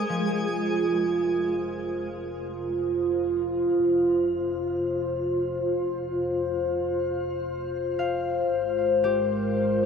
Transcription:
Already playing: G#3 D4 G4 G#4 A#4 D#6
0.08 F1 F3 F4
1.15 C5
7.99 F5
8.51 G#1 G#3
8.86 A#4
9.04 G4

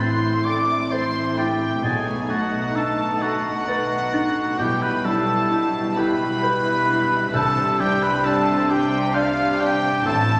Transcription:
Already playing: A1 A2 A3 C4 E4
0.00 C4 E4 C5 C6
0.45 C4 A4 D5 D6 A6
0.90 C4 C5 C6 A6
1.37 C4 E4 G4 G5 A6
1.83 B1 B2 A3 D#4 G#4 G#5 A6
2.29 A3 D#4 F#4 F#5 A6
2.75 D#4 A4 A5 A6
3.21 D#4 F#4 A4 F#5 A6
3.68 D#4 B4 A6
4.13 D#4 A6
4.58 B1 G3 E4 G4 G5 G6
4.82 B4 B5
5.05 G3 E4 A4 A5 G6
5.51 E4 G6
5.96 E4 G4 B4 B5 G6
6.42 E4 B4 G6
6.87 E4 G6
7.34 C2 C3 C4 D4 A4 A5 G6
7.79 G3 D4 G4 G5 G6
8.03 B4 B5
8.25 D4 A4 A5 G6
8.70 D4 G4 G5 G6
9.14 D4 F4 D5 F5 G6
9.60 D4 G4 G5 G6
10.05 A1 A2 A3 C4 D4 E4 A4 A5 A6

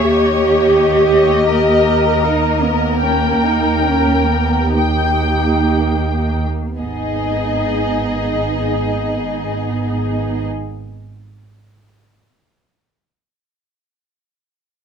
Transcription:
Already playing: C#5
0.03 D#2 A#3 G4 D#5
1.47 A#4
2.22 D#4
2.62 B3
3.01 C#4 A#4 G5
3.43 D#4
3.86 C#4
4.29 B3
4.76 A#3 D#4 G4 G5
6.78 G#1 B3 D#4 G#4 D#5

